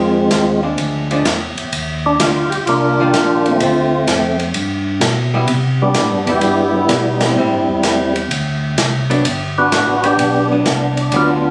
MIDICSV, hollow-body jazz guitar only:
0, 0, Header, 1, 2, 480
1, 0, Start_track
1, 0, Key_signature, 1, "major"
1, 0, Tempo, 469851
1, 1761, Time_signature, 4, 2, 24, 8
1, 11754, End_track
2, 0, Start_track
2, 0, Title_t, "Hollow-body jazz guitar"
2, 0, Program_c, 0, 26
2, 0, Note_on_c, 0, 51, 59
2, 0, Note_on_c, 0, 56, 60
2, 0, Note_on_c, 0, 60, 60
2, 575, Note_off_c, 0, 51, 0
2, 579, Note_off_c, 0, 56, 0
2, 583, Note_off_c, 0, 60, 0
2, 639, Note_on_c, 0, 53, 53
2, 643, Note_on_c, 0, 56, 57
2, 646, Note_on_c, 0, 62, 66
2, 1091, Note_off_c, 0, 53, 0
2, 1093, Note_off_c, 0, 56, 0
2, 1094, Note_off_c, 0, 62, 0
2, 1133, Note_on_c, 0, 53, 67
2, 1137, Note_on_c, 0, 56, 61
2, 1141, Note_on_c, 0, 62, 72
2, 1268, Note_off_c, 0, 53, 0
2, 1269, Note_off_c, 0, 56, 0
2, 1271, Note_off_c, 0, 62, 0
2, 2254, Note_on_c, 0, 51, 51
2, 2254, Note_on_c, 0, 55, 62
2, 2259, Note_on_c, 0, 62, 61
2, 2263, Note_on_c, 0, 65, 64
2, 2543, Note_off_c, 0, 51, 0
2, 2543, Note_off_c, 0, 55, 0
2, 2546, Note_off_c, 0, 62, 0
2, 2548, Note_off_c, 0, 65, 0
2, 3065, Note_on_c, 0, 51, 63
2, 3065, Note_on_c, 0, 55, 64
2, 3070, Note_on_c, 0, 62, 61
2, 3076, Note_on_c, 0, 65, 72
2, 3660, Note_off_c, 0, 51, 0
2, 3660, Note_off_c, 0, 55, 0
2, 3663, Note_off_c, 0, 62, 0
2, 3666, Note_off_c, 0, 65, 0
2, 3692, Note_on_c, 0, 50, 53
2, 3698, Note_on_c, 0, 60, 67
2, 3702, Note_on_c, 0, 57, 61
2, 3705, Note_on_c, 0, 65, 63
2, 3983, Note_off_c, 0, 50, 0
2, 3986, Note_off_c, 0, 60, 0
2, 3988, Note_off_c, 0, 57, 0
2, 3990, Note_off_c, 0, 65, 0
2, 5454, Note_on_c, 0, 55, 63
2, 5459, Note_on_c, 0, 59, 62
2, 5463, Note_on_c, 0, 64, 66
2, 5591, Note_off_c, 0, 55, 0
2, 5593, Note_off_c, 0, 59, 0
2, 5595, Note_off_c, 0, 64, 0
2, 6404, Note_on_c, 0, 55, 67
2, 6410, Note_on_c, 0, 59, 64
2, 6420, Note_on_c, 0, 64, 75
2, 6546, Note_off_c, 0, 55, 0
2, 6549, Note_off_c, 0, 59, 0
2, 6554, Note_off_c, 0, 64, 0
2, 7052, Note_on_c, 0, 55, 57
2, 7057, Note_on_c, 0, 59, 58
2, 7067, Note_on_c, 0, 64, 59
2, 7344, Note_off_c, 0, 55, 0
2, 7347, Note_off_c, 0, 59, 0
2, 7352, Note_off_c, 0, 64, 0
2, 7532, Note_on_c, 0, 55, 58
2, 7539, Note_on_c, 0, 60, 62
2, 7545, Note_on_c, 0, 64, 63
2, 7824, Note_off_c, 0, 55, 0
2, 7828, Note_off_c, 0, 60, 0
2, 7831, Note_off_c, 0, 64, 0
2, 9294, Note_on_c, 0, 54, 65
2, 9298, Note_on_c, 0, 59, 65
2, 9298, Note_on_c, 0, 62, 77
2, 9430, Note_off_c, 0, 54, 0
2, 9433, Note_off_c, 0, 59, 0
2, 9433, Note_off_c, 0, 62, 0
2, 10252, Note_on_c, 0, 59, 68
2, 10259, Note_on_c, 0, 62, 70
2, 10699, Note_off_c, 0, 59, 0
2, 10702, Note_off_c, 0, 62, 0
2, 10741, Note_on_c, 0, 54, 52
2, 10746, Note_on_c, 0, 59, 61
2, 10749, Note_on_c, 0, 62, 58
2, 10873, Note_off_c, 0, 54, 0
2, 10876, Note_off_c, 0, 59, 0
2, 10878, Note_off_c, 0, 62, 0
2, 11373, Note_on_c, 0, 54, 55
2, 11377, Note_on_c, 0, 59, 63
2, 11381, Note_on_c, 0, 62, 64
2, 11663, Note_off_c, 0, 54, 0
2, 11665, Note_off_c, 0, 59, 0
2, 11667, Note_off_c, 0, 62, 0
2, 11754, End_track
0, 0, End_of_file